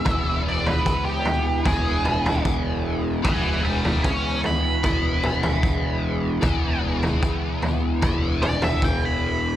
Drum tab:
T2 |----------oo----|----------oo----|----------oo----|
FT |o--o--o-o--o----|o--o--o-o--o----|o--o--o-o--o----|
BD |o---o---o---o---|o---o---o---o---|o---o---o---o---|